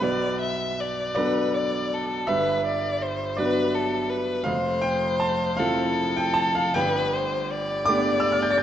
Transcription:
0.00 B1 B2 B4 D5
0.41 E5
0.80 D5
1.15 F#3 B3 D4 A4 B4 D5
1.54 D5
1.93 A4
2.27 G1 G2 B4 E5
2.65 D5
3.02 C5
3.37 F#3 B3 D4 B4 D5
3.75 A4
4.10 B4
4.44 F1 F2 C5 F5
4.81 G5
5.20 A5
5.57 F3 C4 E4 A4 F5
6.17 G5
6.34 A5
6.55 F5
6.74 G1 G2 B4 G5
7.13 C5
7.51 D5
7.85 A3 B3 D4 G4 D6
8.20 E6
8.32 F6
8.43 G6
8.51 A6
8.58 G6

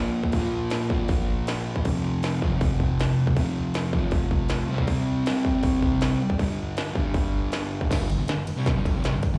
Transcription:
Already playing: A#2 F3 A#3
0.23 kick
0.32 A#2, kick, crash
0.36 F3 A#3
0.70 snare, crash
0.90 F3 A#3, kick
0.95 A#2
1.08 kick, crash
1.47 snare, crash
1.76 kick
1.85 F2 C3, kick, crash
1.90 F3
2.23 snare, crash
2.41 C3 F3, kick
2.47 F2
2.61 kick, crash
2.80 kick
2.99 snare, crash
3.27 kick
3.36 F2 C3, kick, crash
3.42 F3
3.74 snare, crash
3.93 C3 F3, kick
3.99 F2
4.11 kick, crash
4.31 kick
4.49 snare, crash
4.67 C3 G3
4.73 C4
4.78 kick
4.87 kick, crash
5.25 C3 G3, snare, crash
5.30 C4
5.45 kick
5.63 kick, crash
5.82 kick
6.01 snare, crash
6.30 kick
6.38 G2 D3, kick, crash
6.44 G3
6.77 snare, crash
6.94 D3 G3, kick
6.99 G2
7.14 kick, crash
7.52 snare, crash
7.81 kick
7.90 G2 D3 G3, kick, snare, crash, ride
8.10 G2 D3, ride
8.18 G2 D3
8.28 G2 D3, snare, ride
8.47 muted distorted electric guitar stroke, ride
8.57 C3 G3
8.66 muted distorted electric guitar stroke, kick, snare, ride
8.75 G2 D3 G3
8.85 kick, ride
8.94 F2 C3
9.04 C3 G3, snare, ride
9.15 G2 D3
9.23 kick, ride
9.34 G2 D3

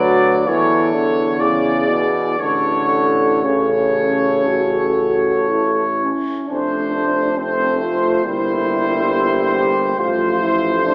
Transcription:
Already playing: D2 F#3 F#4 B4 D5
0.47 E2 E3 E4 A4 C#5
0.94 D3
1.39 C#3 E4 G#4 D5
1.89 B2
2.39 A1 D3 E4 A4 C#5
3.43 C#3 C#4 A4 C#5
4.47 F#4
5.50 E4
6.00 C#4
6.49 F1 A3 C4 D4 C5
7.37 A3 C4 C5
7.81 F4
8.25 G1 G3 A#3 E4 C5
9.55 G4
9.98 A1 F3 A3 F4 C5
10.40 E4
10.83 D4

